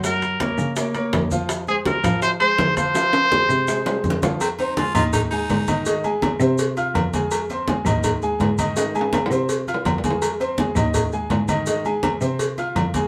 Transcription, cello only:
X:1
M:4/4
L:1/8
Q:1/4=165
K:Fm
V:1 name="Cello" clef=bass
_G,,3 D,3 F,,2- | F,,3 F,3 F,2- | F,3 C,3 F,,2- | F,,3 E,,3 A,,2- |
A,,3 C,3 F,,2- | F,,3 E,,3 A,,2- | A,,3 C,3 F,,2- | F,,3 E,,3 A,,2- |
A,,3 C,3 F,,2 |]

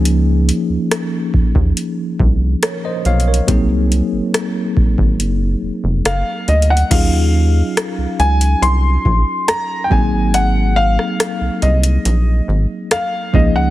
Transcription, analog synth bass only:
X:1
M:4/4
L:1/16
Q:1/4=70
K:Abmix
V:1 name="Analog synth bass" clef=bass
D,,3 E,, z2 E,, E,, z2 C,,2 z2 _C,,2 | C,,3 A,,, z2 A,,, A,,, G,,,2 F,,, F,,, G,,, z =D,,2 | E,,4 z D,, D,,2 C,,2 B,,, z3 A,,,2- | A,,,4 z C,, C,,2 B,,,2 A,,, z3 D,,2 |]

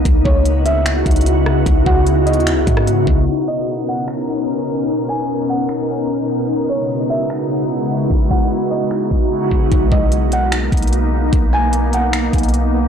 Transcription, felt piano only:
X:1
M:4/4
L:1/8
Q:1/4=149
K:B
V:1 name="Felt piano"
z c2 e z4 | z f2 d z4 | z d2 f z4 | z g2 f z4 |
z c2 e z4 | z f2 d z4 | z d2 f z4 | z g2 f z4 |]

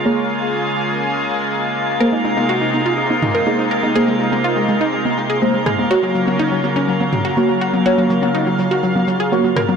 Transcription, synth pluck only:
X:1
M:4/4
L:1/16
Q:1/4=123
K:Abmix
V:1 name="Synth pluck" clef=bass
z16 | B E E E G E E F E E E B E E B E | A A, A, A, F A, A, E A, A, A, A A, A, A A, | G G, G, G, E G, G, D G, G, G, G G, G, G G, |
G G, G, G, E G, G, G G, G, G, A G, G, B G, |]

